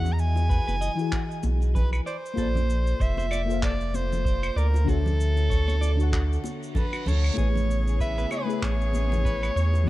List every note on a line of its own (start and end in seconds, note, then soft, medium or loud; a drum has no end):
0.00 0.60 E2 medium
0.00 0.93 E3 medium
0.00 0.94 E4 medium
0.00 0.95 F#4 medium
0.00 0.96 G#4 medium
0.00 0.97 D#5 medium
0.00 0.14 F#5 loud
0.05 low conga medium
0.05 cabasa soft
0.13 0.22 A#5 medium
0.19 1.49 G#5 loud
0.19 cabasa medium
0.36 high bongo medium
0.36 cabasa soft
0.50 0.66 B4 medium
0.50 kick loud
0.50 cabasa medium
0.68 0.89 F#1 medium
0.68 0.75 B4 loud
0.68 high conga medium
0.68 cabasa soft
0.81 0.91 D#5 loud
0.81 high bongo soft
0.81 cabasa medium
0.95 2.03 E3 medium
0.95 2.04 E4 medium
0.95 2.05 F#4 medium
0.95 cabasa soft
1.01 2.06 G#4 medium
1.12 1.22 F#4 loud
1.12 kick loud
1.12 clap medium
1.12 cabasa medium
1.31 cabasa soft
1.43 2.00 B1 loud
1.43 high bongo medium
1.43 high conga medium
1.43 cabasa medium
1.62 cabasa soft
1.75 1.91 B4 medium
1.75 1.90 B4 loud
1.75 kick loud
1.75 low conga medium
1.75 cabasa medium
1.93 2.00 B4 loud
1.93 cabasa soft
1.93 claves medium
2.06 3.03 C5 loud
2.06 2.16 D5 loud
2.06 cabasa medium
2.26 cabasa medium
2.34 2.94 A#1 loud
2.34 3.43 A#3 medium
2.34 3.44 F4 medium
2.34 3.45 A4 medium
2.34 kick loud
2.34 high conga medium
2.34 cabasa medium
2.38 2.47 A4 loud
2.38 3.46 C5 medium
2.38 3.47 D5 medium
2.55 low conga medium
2.55 cabasa soft
2.70 cabasa medium
2.87 cabasa medium
3.00 4.50 F1 medium
3.00 3.16 C5 medium
3.00 3.63 E5 loud
3.00 kick loud
3.00 cabasa medium
3.17 3.25 C5 loud
3.17 high conga medium
3.17 cabasa soft
3.31 3.41 D5 loud
3.31 high bongo medium
3.31 cabasa medium
3.31 claves medium
3.46 4.83 A#3 medium
3.46 4.84 F4 medium
3.46 4.85 A4 medium
3.50 4.86 C5 medium
3.50 4.87 F5 medium
3.50 cabasa soft
3.62 3.72 A4 loud
3.62 3.97 D5 loud
3.62 kick loud
3.62 clap medium
3.62 cabasa medium
3.81 cabasa soft
3.94 4.60 C5 loud
3.94 high conga medium
3.94 cabasa medium
4.12 low conga medium
4.12 cabasa medium
4.25 4.41 C5 medium
4.25 kick loud
4.25 cabasa soft
4.43 4.50 C5 loud
4.43 cabasa soft
4.43 claves medium
4.56 6.38 D2 medium
4.56 4.91 A#4 medium
4.56 4.66 D5 loud
4.56 cabasa medium
4.74 high bongo medium
4.74 cabasa medium
4.84 5.93 D3 medium
4.84 5.94 D4 medium
4.84 4.97 F#4 medium
4.84 5.95 F#4 medium
4.84 kick loud
4.88 6.50 A4 loud
4.88 5.96 C#5 medium
4.88 5.97 E5 medium
4.88 high conga medium
4.88 cabasa medium
5.06 low conga medium
5.06 cabasa soft
5.20 cabasa medium
5.37 high bongo medium
5.37 cabasa soft
5.50 5.66 C#5 medium
5.50 kick loud
5.50 cabasa medium
5.68 5.75 C#5 loud
5.68 high conga medium
5.68 cabasa soft
5.81 5.91 D5 loud
5.81 high bongo medium
5.81 cabasa medium
5.95 7.32 D3 medium
5.95 7.33 D4 medium
5.95 7.34 F#4 medium
6.00 7.36 F#5 medium
6.00 7.35 C#6 medium
6.00 cabasa medium
6.12 6.22 F#4 loud
6.12 kick loud
6.12 clap medium
6.12 reverse cymbal medium
6.12 cabasa medium
6.33 cabasa soft
6.44 high bongo medium
6.44 high conga medium
6.44 cabasa medium
6.63 cabasa medium
6.75 6.85 A4 medium
6.75 7.10 B4 medium
6.75 kick loud
6.75 low conga medium
6.75 cabasa soft
6.93 7.06 F#4 medium
6.93 cabasa soft
6.93 claves medium
7.06 7.30 D2 medium
7.06 7.24 A4 medium
7.06 8.01 C#5 loud
7.06 low conga loud
7.06 cabasa medium
7.24 cabasa soft
7.24 claves medium
7.34 8.25 A1 loud
7.34 8.43 A3 medium
7.34 8.44 E4 medium
7.34 8.45 G#4 medium
7.34 kick loud
7.34 high conga medium
7.38 9.85 C#3 medium
7.38 9.85 B3 medium
7.38 9.85 G#4 medium
7.38 7.47 G#4 loud
7.38 8.46 B4 medium
7.38 8.47 C#5 medium
7.38 cabasa medium
7.55 low conga medium
7.55 cabasa soft
7.71 cabasa medium
7.87 cabasa medium
8.00 8.16 B4 medium
8.00 8.30 E5 loud
8.00 kick loud
8.00 cabasa medium
8.18 8.25 B4 loud
8.18 high conga medium
8.18 cabasa soft
8.31 8.65 B4 loud
8.31 8.41 C#5 loud
8.31 high bongo medium
8.31 cabasa medium
8.31 claves medium
8.45 9.82 A3 medium
8.45 9.83 E4 medium
8.45 9.84 G#4 medium
8.50 9.85 B4 medium
8.50 9.86 E5 medium
8.50 cabasa medium
8.62 9.50 A1 loud
8.62 8.72 G#4 loud
8.62 9.89 C#5 loud
8.62 kick loud
8.62 clap medium
8.62 cabasa medium
8.81 cabasa soft
8.94 high conga medium
8.94 cabasa medium
9.12 low conga medium
9.12 cabasa soft
9.25 9.41 B4 medium
9.25 kick loud
9.25 cabasa soft
9.43 9.50 B4 loud
9.43 cabasa soft
9.43 claves medium
9.56 9.89 E2 medium
9.56 9.66 C#5 medium
9.56 cabasa medium
9.73 high bongo medium
9.73 cabasa medium
9.84 9.89 E3 medium
9.84 9.89 E4 medium